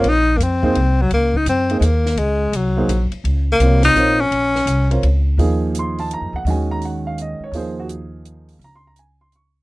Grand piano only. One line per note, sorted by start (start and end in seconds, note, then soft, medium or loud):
0.62 0.74 A#3 medium
0.62 0.74 D#4 medium
0.62 0.74 G#4 medium
0.62 0.75 C5 medium
1.70 1.81 A#3 soft
1.70 1.81 D#4 soft
1.70 1.81 G#4 soft
1.70 1.82 C5 medium
2.77 2.88 A#3 medium
2.77 2.88 D#4 soft
2.77 2.88 G#4 soft
2.77 2.88 C5 medium
3.61 3.95 C3 medium
3.61 3.95 F4 medium
3.61 3.95 A#4 medium
3.61 3.96 C#5 medium
3.96 4.17 C4 medium
3.96 4.17 F4 medium
3.96 4.17 A#4 medium
3.96 4.18 C#5 medium
4.90 5.01 C4 medium
4.90 5.02 F4 soft
4.90 5.02 A#4 medium
4.90 5.02 C#5 medium
5.39 6.38 F3 medium
5.39 6.39 A#3 medium
5.39 6.39 D#4 medium
5.39 6.39 G#4 medium
5.79 5.99 C6 medium
6.00 6.11 A5 medium
6.14 6.34 A#5 medium
6.36 6.47 F#5 medium
6.47 7.46 D#3 medium
6.47 7.46 G#3 medium
6.47 7.46 C#4 medium
6.47 7.46 F#4 medium
6.47 6.71 G#5 medium
6.71 6.82 A#5 medium
6.85 7.06 F#5 medium
7.07 7.18 F5 medium
7.22 7.42 D#5 medium
7.44 7.54 C#5 medium
7.54 8.53 F3 medium
7.54 8.53 A#3 medium
7.54 8.54 D#4 soft
7.54 8.54 G#4 medium
7.54 7.78 C5 medium
7.80 7.86 F#4 medium
8.64 8.74 A#5 medium
8.76 8.85 C6 medium
8.87 8.97 A#5 medium
8.99 9.20 G#5 medium
9.21 9.32 C6 medium
9.36 9.61 C#6 medium